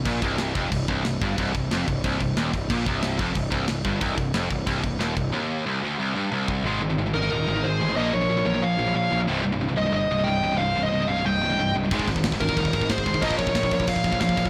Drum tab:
CC |x-x-x-x-x-x-x-x-|x-x-x-x-x-x-x-x-|x-x-x-x-x-x-x-x-|x-x-x-x-x-x-x-x-|
SD |----o-------o---|----o-------o---|----o-------o---|----o-------o---|
T1 |----------------|----------------|----------------|----------------|
BD |o-o---o-o-o---o-|o-o---o-o-o---o-|o-o---o-o-o---o-|o-o---o-o-o---o-|

CC |----------------|----------------|----------------|----------------|
SD |----------------|----------------|----------------|----------------|
T1 |------------o---|----------------|----------------|----------------|
BD |--------------o-|----------------|----------------|----------------|

CC |----------------|x-x-x-x-x-x-x-x-|x-x-x-x-x-x-x-x-|
SD |----------------|----o-------o---|----o-------o---|
T1 |----------------|----------------|----------------|
BD |----------------|oooooooooooooooo|oooooooooooooooo|